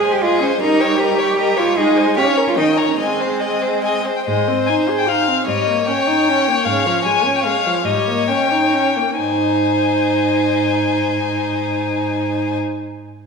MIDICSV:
0, 0, Header, 1, 5, 480
1, 0, Start_track
1, 0, Key_signature, -4, "major"
1, 0, Tempo, 389358
1, 756, Time_signature, 3, 2, 24, 8
1, 2673, Tempo, 418702
1, 5553, Tempo, 396301
1, 9393, Tempo, 432588
1, 10353, Tempo, 456969
1, 15131, End_track
2, 0, Start_track
2, 0, Title_t, "Violin"
2, 0, Program_c, 0, 40
2, 15, Note_on_c, 0, 80, 39
2, 256, Note_off_c, 0, 80, 0
2, 263, Note_on_c, 0, 75, 45
2, 499, Note_on_c, 0, 80, 40
2, 518, Note_off_c, 0, 75, 0
2, 740, Note_off_c, 0, 80, 0
2, 748, Note_on_c, 0, 75, 39
2, 986, Note_on_c, 0, 79, 35
2, 1004, Note_off_c, 0, 75, 0
2, 1221, Note_on_c, 0, 75, 39
2, 1240, Note_off_c, 0, 79, 0
2, 1471, Note_on_c, 0, 79, 44
2, 1490, Note_off_c, 0, 75, 0
2, 1701, Note_off_c, 0, 79, 0
2, 1708, Note_on_c, 0, 75, 47
2, 1946, Note_on_c, 0, 79, 42
2, 1965, Note_off_c, 0, 75, 0
2, 2187, Note_off_c, 0, 79, 0
2, 2195, Note_on_c, 0, 75, 40
2, 2437, Note_on_c, 0, 80, 35
2, 2455, Note_off_c, 0, 75, 0
2, 2666, Note_off_c, 0, 80, 0
2, 2673, Note_on_c, 0, 77, 40
2, 2893, Note_on_c, 0, 73, 44
2, 2910, Note_off_c, 0, 77, 0
2, 3133, Note_off_c, 0, 73, 0
2, 3141, Note_on_c, 0, 79, 39
2, 3366, Note_on_c, 0, 82, 36
2, 3383, Note_off_c, 0, 79, 0
2, 3613, Note_off_c, 0, 82, 0
2, 3618, Note_on_c, 0, 80, 32
2, 3871, Note_on_c, 0, 84, 29
2, 3888, Note_off_c, 0, 80, 0
2, 4105, Note_off_c, 0, 84, 0
2, 4112, Note_on_c, 0, 75, 42
2, 4568, Note_off_c, 0, 75, 0
2, 4595, Note_on_c, 0, 80, 45
2, 4687, Note_off_c, 0, 80, 0
2, 4960, Note_on_c, 0, 79, 34
2, 5060, Note_off_c, 0, 79, 0
2, 5067, Note_on_c, 0, 75, 53
2, 5509, Note_off_c, 0, 75, 0
2, 5533, Note_on_c, 0, 80, 49
2, 5629, Note_off_c, 0, 80, 0
2, 5921, Note_on_c, 0, 79, 45
2, 6042, Note_on_c, 0, 77, 60
2, 6060, Note_off_c, 0, 79, 0
2, 6512, Note_off_c, 0, 77, 0
2, 6519, Note_on_c, 0, 75, 47
2, 6986, Note_off_c, 0, 75, 0
2, 7013, Note_on_c, 0, 79, 61
2, 7946, Note_on_c, 0, 77, 59
2, 7965, Note_off_c, 0, 79, 0
2, 8414, Note_off_c, 0, 77, 0
2, 8422, Note_on_c, 0, 80, 52
2, 8798, Note_on_c, 0, 79, 47
2, 8816, Note_off_c, 0, 80, 0
2, 8886, Note_off_c, 0, 79, 0
2, 8893, Note_on_c, 0, 77, 58
2, 9391, Note_on_c, 0, 75, 48
2, 9408, Note_off_c, 0, 77, 0
2, 9867, Note_on_c, 0, 79, 48
2, 9884, Note_off_c, 0, 75, 0
2, 10848, Note_off_c, 0, 79, 0
2, 10855, Note_on_c, 0, 80, 39
2, 14404, Note_off_c, 0, 80, 0
2, 15131, End_track
3, 0, Start_track
3, 0, Title_t, "Violin"
3, 0, Program_c, 1, 40
3, 36, Note_on_c, 1, 72, 37
3, 277, Note_off_c, 1, 72, 0
3, 284, Note_on_c, 1, 68, 38
3, 531, Note_on_c, 1, 72, 37
3, 550, Note_off_c, 1, 68, 0
3, 752, Note_off_c, 1, 72, 0
3, 760, Note_on_c, 1, 70, 39
3, 997, Note_on_c, 1, 73, 43
3, 1016, Note_off_c, 1, 70, 0
3, 1230, Note_on_c, 1, 70, 42
3, 1248, Note_off_c, 1, 73, 0
3, 1463, Note_on_c, 1, 73, 39
3, 1481, Note_off_c, 1, 70, 0
3, 1689, Note_off_c, 1, 73, 0
3, 1696, Note_on_c, 1, 70, 42
3, 1934, Note_on_c, 1, 73, 46
3, 1953, Note_off_c, 1, 70, 0
3, 2181, Note_off_c, 1, 73, 0
3, 2187, Note_on_c, 1, 68, 37
3, 2417, Note_on_c, 1, 72, 42
3, 2436, Note_off_c, 1, 68, 0
3, 2667, Note_off_c, 1, 72, 0
3, 2673, Note_on_c, 1, 73, 41
3, 2908, Note_on_c, 1, 70, 39
3, 2925, Note_off_c, 1, 73, 0
3, 3124, Note_off_c, 1, 70, 0
3, 3131, Note_on_c, 1, 75, 33
3, 3378, Note_on_c, 1, 73, 37
3, 3395, Note_off_c, 1, 75, 0
3, 3605, Note_off_c, 1, 73, 0
3, 3612, Note_on_c, 1, 75, 33
3, 3860, Note_on_c, 1, 72, 34
3, 3877, Note_off_c, 1, 75, 0
3, 4093, Note_on_c, 1, 75, 34
3, 4110, Note_off_c, 1, 72, 0
3, 4341, Note_on_c, 1, 72, 31
3, 4358, Note_off_c, 1, 75, 0
3, 4582, Note_off_c, 1, 72, 0
3, 4588, Note_on_c, 1, 75, 30
3, 4833, Note_on_c, 1, 72, 29
3, 4850, Note_off_c, 1, 75, 0
3, 5063, Note_off_c, 1, 72, 0
3, 5070, Note_on_c, 1, 72, 34
3, 6458, Note_off_c, 1, 72, 0
3, 6515, Note_on_c, 1, 73, 39
3, 9344, Note_off_c, 1, 73, 0
3, 9400, Note_on_c, 1, 73, 40
3, 10583, Note_off_c, 1, 73, 0
3, 10860, Note_on_c, 1, 72, 32
3, 14409, Note_off_c, 1, 72, 0
3, 15131, End_track
4, 0, Start_track
4, 0, Title_t, "Cello"
4, 0, Program_c, 2, 42
4, 0, Note_on_c, 2, 68, 55
4, 145, Note_on_c, 2, 67, 61
4, 163, Note_off_c, 2, 68, 0
4, 272, Note_on_c, 2, 65, 66
4, 291, Note_off_c, 2, 67, 0
4, 506, Note_off_c, 2, 65, 0
4, 513, Note_on_c, 2, 61, 59
4, 610, Note_off_c, 2, 61, 0
4, 748, Note_on_c, 2, 63, 61
4, 1212, Note_off_c, 2, 63, 0
4, 1219, Note_on_c, 2, 67, 55
4, 1948, Note_on_c, 2, 65, 58
4, 1967, Note_off_c, 2, 67, 0
4, 2193, Note_on_c, 2, 63, 57
4, 2211, Note_off_c, 2, 65, 0
4, 2664, Note_off_c, 2, 63, 0
4, 2671, Note_on_c, 2, 67, 66
4, 2763, Note_off_c, 2, 67, 0
4, 3025, Note_on_c, 2, 65, 51
4, 3128, Note_off_c, 2, 65, 0
4, 3135, Note_on_c, 2, 63, 63
4, 3227, Note_off_c, 2, 63, 0
4, 3494, Note_on_c, 2, 61, 42
4, 3611, Note_off_c, 2, 61, 0
4, 3618, Note_on_c, 2, 60, 41
4, 4824, Note_off_c, 2, 60, 0
4, 5094, Note_on_c, 2, 44, 46
4, 5459, Note_off_c, 2, 44, 0
4, 6523, Note_on_c, 2, 44, 42
4, 6897, Note_off_c, 2, 44, 0
4, 7946, Note_on_c, 2, 44, 44
4, 8319, Note_off_c, 2, 44, 0
4, 9390, Note_on_c, 2, 44, 42
4, 9760, Note_off_c, 2, 44, 0
4, 10859, Note_on_c, 2, 44, 35
4, 14407, Note_off_c, 2, 44, 0
4, 15131, End_track
5, 0, Start_track
5, 0, Title_t, "Viola"
5, 0, Program_c, 3, 41
5, 0, Note_on_c, 3, 56, 40
5, 702, Note_off_c, 3, 56, 0
5, 765, Note_on_c, 3, 55, 48
5, 2165, Note_off_c, 3, 55, 0
5, 2201, Note_on_c, 3, 56, 50
5, 2678, Note_on_c, 3, 61, 51
5, 2695, Note_off_c, 3, 56, 0
5, 3141, Note_on_c, 3, 51, 44
5, 3159, Note_off_c, 3, 61, 0
5, 3617, Note_off_c, 3, 51, 0
5, 3624, Note_on_c, 3, 56, 39
5, 4827, Note_off_c, 3, 56, 0
5, 5094, Note_on_c, 3, 56, 40
5, 5324, Note_on_c, 3, 60, 36
5, 5341, Note_off_c, 3, 56, 0
5, 5565, Note_on_c, 3, 63, 38
5, 5583, Note_off_c, 3, 60, 0
5, 5804, Note_on_c, 3, 68, 37
5, 5822, Note_off_c, 3, 63, 0
5, 6041, Note_on_c, 3, 63, 35
5, 6059, Note_off_c, 3, 68, 0
5, 6277, Note_on_c, 3, 60, 32
5, 6295, Note_off_c, 3, 63, 0
5, 6507, Note_off_c, 3, 60, 0
5, 6514, Note_on_c, 3, 55, 34
5, 6759, Note_on_c, 3, 58, 38
5, 6777, Note_off_c, 3, 55, 0
5, 7003, Note_on_c, 3, 61, 37
5, 7021, Note_off_c, 3, 58, 0
5, 7244, Note_on_c, 3, 63, 40
5, 7262, Note_off_c, 3, 61, 0
5, 7499, Note_on_c, 3, 61, 37
5, 7517, Note_off_c, 3, 63, 0
5, 7729, Note_on_c, 3, 58, 34
5, 7747, Note_off_c, 3, 61, 0
5, 7952, Note_off_c, 3, 58, 0
5, 7967, Note_on_c, 3, 49, 41
5, 8196, Note_on_c, 3, 53, 42
5, 8214, Note_off_c, 3, 49, 0
5, 8430, Note_on_c, 3, 56, 37
5, 8448, Note_off_c, 3, 53, 0
5, 8672, Note_on_c, 3, 61, 37
5, 8690, Note_off_c, 3, 56, 0
5, 8918, Note_on_c, 3, 56, 36
5, 8936, Note_off_c, 3, 61, 0
5, 9165, Note_on_c, 3, 53, 39
5, 9183, Note_off_c, 3, 56, 0
5, 9403, Note_off_c, 3, 53, 0
5, 9408, Note_on_c, 3, 55, 39
5, 9648, Note_on_c, 3, 58, 37
5, 9664, Note_off_c, 3, 55, 0
5, 9878, Note_on_c, 3, 61, 35
5, 9894, Note_off_c, 3, 58, 0
5, 10132, Note_on_c, 3, 63, 34
5, 10149, Note_off_c, 3, 61, 0
5, 10378, Note_on_c, 3, 61, 33
5, 10394, Note_off_c, 3, 63, 0
5, 10618, Note_on_c, 3, 58, 28
5, 10634, Note_off_c, 3, 61, 0
5, 10858, Note_off_c, 3, 58, 0
5, 10873, Note_on_c, 3, 63, 29
5, 14422, Note_off_c, 3, 63, 0
5, 15131, End_track
0, 0, End_of_file